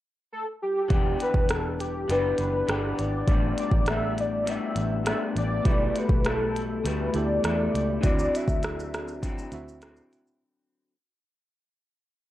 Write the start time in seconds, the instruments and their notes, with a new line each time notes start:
0.32 soft synth lead A4
0.62 soft synth lead G4
0.88 fingered electric bass E1, clean electric guitar E3 B3 D4, kick, closed hi-hat
0.92 clean electric guitar G4
1.20 soft synth lead B4, closed hi-hat
1.34 fingered electric bass E1, kick
1.49 soft synth lead A4, cross-stick, closed hi-hat
1.80 soft synth lead G4, closed hi-hat
2.08 fingered electric bass F#1, clean electric guitar E3 B3 D4 G4, soft synth lead B4, closed hi-hat
2.38 fingered electric bass F#1, soft synth lead B4, closed hi-hat
2.67 fingered electric bass G1, clean electric guitar E3 B3 D4 G4, cross-stick, closed hi-hat
2.98 fingered electric bass G#1, soft synth lead D5, closed hi-hat
3.28 fingered electric bass A1, clean electric guitar A2 G3 B3 D4, kick, closed hi-hat
3.58 soft synth lead D5, closed hi-hat
3.71 fingered electric bass A1, kick
3.86 clean electric guitar A2 G3 B3, soft synth lead E5, cross-stick, closed hi-hat
3.90 clean electric guitar D4
4.18 soft synth lead D5, closed hi-hat
4.45 clean electric guitar A2 G3 B3 D4, closed hi-hat
4.50 soft synth lead E5
4.76 fingered electric bass A1, closed hi-hat
5.05 clean electric guitar A2 G3 B3 D4, soft synth lead E5, cross-stick, closed hi-hat
5.36 fingered electric bass A1, soft synth lead D5, closed hi-hat
5.64 fingered electric bass B1, clean electric guitar B2 G3 A3 E4, tine electric piano A3 E4 G4 B4, kick, closed hi-hat
5.96 soft synth lead B4, closed hi-hat
6.09 fingered electric bass B1, kick
6.25 clean electric guitar B2 G3 A3 E4, soft synth lead A4, cross-stick, closed hi-hat
6.56 closed hi-hat
6.84 fingered electric bass D2, clean electric guitar B2 G3 A3 E4, soft synth lead B4, closed hi-hat
7.13 fingered electric bass D2, tine electric piano A3 E4 G4 A4, soft synth lead D5, closed hi-hat
7.43 fingered electric bass E2, clean electric guitar B2 G3 A3 E4, cross-stick, closed hi-hat
7.74 fingered electric bass C#2, closed hi-hat
8.01 fingered electric bass D2, clean electric guitar D3 F#3 C4, tine electric piano C4 E4 F#4, kick, closed hi-hat, shaker
8.06 clean electric guitar E4, tine electric piano D5, soft synth lead D5
8.19 shaker
8.35 soft synth lead E5, closed hi-hat, shaker
8.48 fingered electric bass D2, kick, shaker
8.63 cross-stick, closed hi-hat, shaker
8.80 shaker
8.94 cross-stick, closed hi-hat, shaker
9.08 shaker
9.22 clean electric guitar D3 F#3 C4 E4, kick, closed hi-hat, shaker
9.38 shaker
9.52 fingered electric bass D2, tine electric piano C4 E4 F#4 E5, closed hi-hat, shaker
9.68 shaker
9.82 clean electric guitar D3 F#3 C4 E4, cross-stick, closed hi-hat, shaker
9.97 shaker
10.13 closed hi-hat, shaker
10.27 shaker